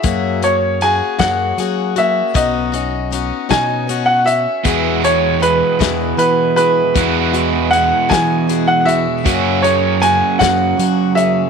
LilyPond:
<<
  \new Staff \with { instrumentName = "Grand piano" } { \time 6/8 \key e \lydian \tempo 4. = 52 e''8 cis''8 gis''8 fis''4 e''8 | dis''4. gis''8. fis''16 e''8~ | e''8 cis''8 b'4 b'8 b'8~ | b'4 fis''8 gis''8. fis''16 e''8~ |
e''8 cis''8 gis''8 fis''4 e''8 | }
  \new Staff \with { instrumentName = "Steel-string acoustic guitar" } { \time 6/8 \key e \lydian <fis, fis ais cis' fis' gis'>8 <ais cis' fis' gis'>8 <ais cis' fis' gis'>8 <fis, fis ais cis' fis' gis'>8 <ais cis' fis' gis'>8 <ais cis' fis' gis'>8 | <b, b cis' dis' fis'>8 <cis' dis' fis'>8 <b cis' dis' fis'>8 <b, b cis' dis' fis'>8 <b cis' dis' fis'>8 <cis' fis'>8 | <e b e' fis' gis'>8 <e' fis' gis'>8 <b e' fis' gis'>8 <e b e' fis' gis'>8 <b e' fis' gis'>8 <e' fis' gis'>8 | <e b e' fis' gis'>8 <e' fis' gis'>8 <b e' fis' gis'>8 <e b e' fis' gis'>8 <b e' fis' gis'>8 <e' fis' gis'>8 |
<fis, fis ais cis' fis' gis'>8 <ais cis' fis' gis'>8 <ais cis' fis' gis'>8 <fis, fis ais cis' fis' gis'>8 <ais cis' fis' gis'>8 <ais cis' fis' gis'>8 | }
  \new Staff \with { instrumentName = "Overdriven electric guitar" } { \clef bass \time 6/8 \key e \lydian r2. | r2. | <e, b, e gis b gis'>2. | <e, b, e gis b gis'>2. |
<fis, cis fis ais cis' fis'>2. | }
  \new Staff \with { instrumentName = "Fingered electric bass" } { \clef bass \time 6/8 \key e \lydian fis,4. fis,8 fis4 | b,,4. b,4. | e,4. e,8 e4 | e,4. e4. |
fis,4. fis,8 fis4 | }
  \new DrumStaff \with { instrumentName = "Drums" } \drummode { \time 6/8 <hh bd>8 hh8 hh8 <hh bd sn>8 hh8 hh8 | <hh bd>8 hh8 hh8 <hh bd sn>8 hh8 hh8 | <hh bd>8 hh8 hh8 <hh bd sn>8 hh8 hh8 | <hh bd>8 hh8 hh8 <hh bd sn>8 hh8 hh8 |
<hh bd>8 hh8 hh8 <hh bd sn>8 hh8 hh8 | }
>>